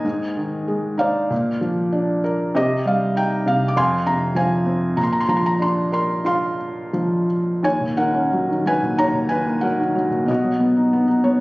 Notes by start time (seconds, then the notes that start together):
Already playing: C5 D#5 G#5
0.05 G#2
0.37 D#3
0.68 G#3
0.98 D#4 C5 D5 F5
1.30 A#2
1.61 F3
1.92 D4
2.24 A#4
2.55 C3 G4 C5 D#5
2.85 G3 F5
3.16 D#4 G5
3.46 C3 F5
3.68 D6
3.76 F2 F5 G#5 C6
4.06 C3 A#5
4.35 F3 C5 F5 G#5
4.66 C4
4.97 A#2 A#5
5.03 C6
5.13 A#5
5.20 C6
5.28 F3 A#5
5.37 C6
5.46 A#5
5.59 D4 C6
5.92 A#4 C6
6.25 F4 F5 C6
6.93 F3
7.63 D#2 C#5 G#5
7.81 A#2
7.97 D#3 A#4 F#5
8.14 C#4
8.33 F#3
8.50 D#3
8.65 F#3 B4 G#5
8.82 A#2
8.97 D#2 C#5 A#5
9.14 A#2
9.29 D#3 B4 G#5
9.46 A#3
9.61 F#3 A#4 F#5
9.79 D#3
9.95 F#3
10.10 A#2
10.26 B2 D#5
10.31 F#4
10.44 F#3
10.60 B3
10.77 D#4
10.93 B3
11.08 D#4
11.24 B3 C#5